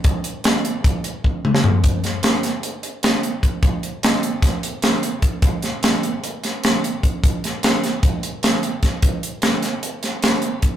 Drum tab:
HH |x-x-x-x-x-x-------|x-x-x-x-x-x-x-x-x-|x-x-x-x-x-x-x-x-x-|x-x-x-x-x-x-x-x-x-|
SD |----o----------o--|--o-o-o-----o-----|----o---o---o-----|--o-o-----o-o-----|
T2 |--------------o---|------------------|------------------|------------------|
FT |----------------o-|------------------|------------------|------------------|
BD |o-------o---o-----|o---------------o-|o-------o-------o-|o---------------o-|

HH |x-x-x-x-x-x-x-x-x-|x-x-x-x-x-x-x-x-x-|
SD |--o-o-o-----o---o-|----o-o---o-o-----|
T2 |------------------|------------------|
FT |------------------|------------------|
BD |o-------o-------o-|o---------------o-|